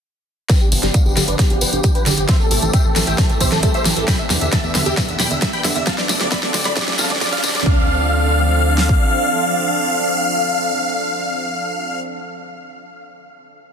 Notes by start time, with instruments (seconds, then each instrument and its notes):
0.49 synth arpeggio sound B2, analog synth pad F3 B3 D4 G4, supersaw synth B4 G5, kick, snare, closed hi-hat, tambourine, riser
0.60 supersaw synth G4, tambourine
0.72 analog synth bass G1, synth arpeggio sound B2, open hi-hat, tambourine
0.83 analog synth bass G1, synth arpeggio sound D3, supersaw synth G4, snare, closed hi-hat, tambourine
0.94 synth arpeggio sound F3, supersaw synth D5 F5, kick, closed hi-hat, tambourine
1.05 analog synth bass G1, supersaw synth G4, tambourine
1.17 analog synth bass G1, synth arpeggio sound D3, supersaw synth G4, snare, open hi-hat, tambourine
1.28 analog synth bass G1, synth arpeggio sound D3, supersaw synth B4 D5, closed hi-hat, tambourine
1.39 synth arpeggio sound B2, supersaw synth G4, kick, snare, closed hi-hat, tambourine
1.50 analog synth bass G1, supersaw synth G4, closed hi-hat, tambourine
1.61 analog synth bass G1, synth arpeggio sound B2, supersaw synth B4 G5, open hi-hat, tambourine
1.73 analog synth bass G1, synth arpeggio sound D3, supersaw synth G4, closed hi-hat, tambourine
1.83 synth arpeggio sound F3, supersaw synth G4, kick, closed hi-hat, tambourine
1.95 supersaw synth B4 G5, closed hi-hat, tambourine
2.06 analog synth bass G1, synth arpeggio sound D3, supersaw synth G4, snare, open hi-hat, tambourine
2.17 analog synth bass G1, synth arpeggio sound D3, supersaw synth G4, closed hi-hat, tambourine
2.29 synth arpeggio sound C3, analog synth pad E3 A3 C4, supersaw synth C5 E5, kick, snare, closed hi-hat, tambourine
2.40 supersaw synth A4, tambourine
2.51 analog synth bass A1, synth arpeggio sound C3, supersaw synth A4, open hi-hat, tambourine
2.62 analog synth bass A1, synth arpeggio sound E3, supersaw synth A4, closed hi-hat, tambourine
2.73 synth arpeggio sound G3, supersaw synth E5 G5, kick, closed hi-hat, tambourine
2.84 analog synth bass A1, supersaw synth A4, tambourine
2.96 analog synth bass A1, synth arpeggio sound E3, supersaw synth A4, snare, open hi-hat, tambourine
3.07 analog synth bass A1, synth arpeggio sound E3, supersaw synth E5 G5, closed hi-hat, tambourine
3.18 synth arpeggio sound C3, supersaw synth A4, kick, snare, closed hi-hat, tambourine
3.29 analog synth bass A1, supersaw synth A4, closed hi-hat, tambourine
3.41 analog synth bass A1, synth arpeggio sound C3, supersaw synth C5 E5, kick, open hi-hat, tambourine
3.52 analog synth bass A1, synth arpeggio sound E3, supersaw synth A4, snare, closed hi-hat, tambourine
3.63 synth arpeggio sound G3, supersaw synth A4, kick, closed hi-hat, tambourine
3.74 supersaw synth C5 E5, closed hi-hat, tambourine
3.85 analog synth bass A1, synth arpeggio sound E3, supersaw synth A4, snare, open hi-hat, tambourine
3.97 analog synth bass A1, synth arpeggio sound E3, supersaw synth A4, closed hi-hat, tambourine
4.08 synth arpeggio sound B2, analog synth pad B3 D4, supersaw synth G5 B5, kick, snare, closed hi-hat, tambourine
4.19 supersaw synth E5, tambourine
4.30 analog synth bass E2, synth arpeggio sound B2, snare, open hi-hat, tambourine
4.41 analog synth bass E2, synth arpeggio sound D3, supersaw synth E5, closed hi-hat, tambourine
4.52 synth arpeggio sound E3, supersaw synth E5 A5, kick, snare, closed hi-hat, tambourine
4.63 analog synth bass E2, supersaw synth E5, tambourine
4.75 analog synth bass E2, synth arpeggio sound D3, supersaw synth E5, snare, open hi-hat, tambourine
4.85 analog synth bass E2, synth arpeggio sound D3, supersaw synth G4 E5, closed hi-hat, tambourine
4.97 synth arpeggio sound B2, kick, snare, closed hi-hat, tambourine
5.08 analog synth bass E2, supersaw synth E5, closed hi-hat, tambourine
5.19 analog synth bass E2, synth arpeggio sound B2, supersaw synth G5 B5, snare, open hi-hat, tambourine
5.31 analog synth bass E2, synth arpeggio sound D3, supersaw synth E5, closed hi-hat, tambourine
5.42 synth arpeggio sound E3, supersaw synth E5, kick, snare, closed hi-hat, tambourine
5.53 supersaw synth G5 B5, closed hi-hat, tambourine
5.64 analog synth bass E2, synth arpeggio sound D3, supersaw synth E5, snare, open hi-hat, tambourine
5.76 analog synth bass E2, synth arpeggio sound D3, supersaw synth E5, closed hi-hat, tambourine
5.87 synth arpeggio sound C3, analog synth pad F3 C4 A4, supersaw synth F5 A5, kick, snare, closed hi-hat, tambourine
5.98 supersaw synth D5, snare, tambourine
6.09 analog synth bass D2, synth arpeggio sound C3, supersaw synth D5, snare, open hi-hat, tambourine
6.20 analog synth bass D2, synth arpeggio sound D3, supersaw synth D5, snare, closed hi-hat, tambourine
6.31 synth arpeggio sound F3, supersaw synth D5 B5, kick, snare, closed hi-hat, tambourine
6.43 analog synth bass D2, supersaw synth D5, snare, tambourine
6.54 analog synth bass D2, synth arpeggio sound D3, supersaw synth D5, snare, open hi-hat, tambourine
6.65 analog synth bass D2, synth arpeggio sound D3, supersaw synth D5 B5, snare, closed hi-hat, tambourine
6.76 synth arpeggio sound C3, supersaw synth D5, kick, snare, closed hi-hat, tambourine
6.82 snare
6.88 analog synth bass D2, supersaw synth D5, snare, closed hi-hat, tambourine
6.93 snare
6.98 analog synth bass D2, synth arpeggio sound C3, supersaw synth F5 A5, kick, snare, open hi-hat, tambourine
7.04 snare
7.10 analog synth bass D2, synth arpeggio sound D3, supersaw synth D5, snare, closed hi-hat, tambourine
7.16 snare
7.21 synth arpeggio sound F3, supersaw synth D5, kick, snare, closed hi-hat, tambourine
7.27 snare
7.32 supersaw synth D5 F5, snare, closed hi-hat, tambourine
7.38 snare
7.43 analog synth bass C2, synth arpeggio sound D3, supersaw synth D5, snare, open hi-hat, tambourine
7.49 snare
7.55 analog synth bass D2, synth arpeggio sound D3, supersaw synth D5, snare, closed hi-hat, tambourine
7.61 snare
7.66 analog synth bass D2, synth arpeggio sound C3, analog synth pad F3 C4 D4 A4, supersaw synth F5, kick
8.78 snare
8.89 kick